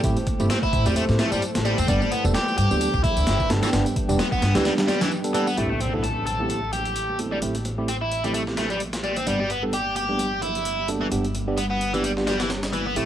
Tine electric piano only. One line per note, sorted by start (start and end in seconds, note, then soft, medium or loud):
0.04 0.17 A3 medium
0.04 0.17 C4 medium
0.04 0.17 E4 medium
0.04 0.17 G4 medium
0.40 0.50 A3 loud
0.40 0.50 C4 medium
0.40 0.50 E4 medium
0.40 0.50 G4 loud
0.86 1.04 A3 medium
0.86 1.04 C4 medium
0.86 1.04 E4 medium
0.86 1.04 G4 loud
1.09 1.27 A3 medium
1.09 1.27 C4 medium
1.09 1.27 E4 medium
1.09 1.27 G4 medium
1.89 2.01 G3 medium
1.89 2.01 B3 medium
1.89 2.01 D4 medium
1.89 2.01 G4 loud
2.24 2.35 G3 medium
2.24 2.35 B3 medium
2.24 2.35 D4 medium
2.24 2.35 A4 loud
2.70 2.88 G3 medium
2.70 2.88 B3 medium
2.70 2.88 D4 medium
2.70 2.88 G4 loud
3.50 3.69 G3 medium
3.50 3.69 B3 medium
3.50 3.69 D4 medium
3.50 3.69 A4 medium
3.73 3.86 G3 medium
3.73 3.86 B3 medium
3.73 3.86 D4 medium
3.73 3.86 G4 loud
4.09 4.19 G3 loud
4.09 4.19 B3 medium
4.09 4.19 D4 medium
4.09 4.19 G4 loud
4.55 4.73 G3 medium
4.55 4.73 B3 medium
4.55 4.73 D4 medium
4.55 4.73 G4 loud
4.78 4.96 G3 medium
4.78 4.96 B3 medium
4.78 4.96 D4 medium
4.78 4.96 G4 medium
5.24 5.33 G3 medium
5.24 5.33 B3 medium
5.24 5.33 D4 medium
5.24 5.33 A4 medium
5.34 5.47 G3 medium
5.34 5.47 B3 medium
5.34 5.47 D4 medium
5.34 5.47 A4 loud
5.57 5.70 A3 medium
5.57 5.70 C4 medium
5.57 5.70 E4 medium
5.57 5.70 G4 loud
5.94 6.04 A3 medium
5.94 6.04 C4 medium
5.94 6.04 E4 medium
5.94 6.04 A4 medium
6.40 6.58 A3 medium
6.40 6.58 C4 medium
6.40 6.58 E4 medium
6.40 6.58 G4 medium
7.19 7.38 A3 medium
7.19 7.38 C4 medium
7.19 7.38 E4 medium
7.19 7.38 A4 medium
7.42 7.55 A3 medium
7.42 7.55 C4 medium
7.42 7.55 E4 medium
7.42 7.55 G4 medium
7.78 7.88 A3 medium
7.78 7.88 C4 medium
7.78 7.88 E4 medium
7.78 7.88 G4 loud
8.25 8.42 A3 medium
8.25 8.42 C4 medium
8.25 8.42 E4 medium
8.25 8.42 G4 medium
8.47 8.65 A3 medium
8.47 8.65 C4 medium
8.47 8.65 E4 medium
8.47 8.65 G4 medium
9.27 9.40 G3 medium
9.27 9.40 B3 medium
9.27 9.40 D4 medium
9.27 9.40 G4 loud
9.63 9.73 G3 medium
9.63 9.73 B3 medium
9.63 9.73 D4 medium
9.63 9.73 A4 medium
10.09 10.27 G3 medium
10.09 10.27 B3 medium
10.09 10.27 D4 medium
10.09 10.27 G4 medium
10.89 11.07 G3 medium
10.89 11.07 B3 medium
10.89 11.07 D4 medium
10.89 11.07 A4 medium
11.12 11.24 G3 medium
11.12 11.24 B3 medium
11.12 11.24 D4 medium
11.12 11.24 G4 medium
11.48 11.58 G3 medium
11.48 11.58 B3 medium
11.48 11.58 D4 medium
11.48 11.58 G4 loud
11.94 12.12 G3 medium
11.94 12.12 B3 medium
11.94 12.12 D4 medium
11.94 12.12 G4 medium
12.17 12.35 G3 medium
12.17 12.35 B3 medium
12.17 12.35 D4 medium
12.17 12.35 G4 medium
12.96 13.05 A3 medium
12.96 13.05 C4 medium
12.96 13.05 E4 medium
12.96 13.05 G4 loud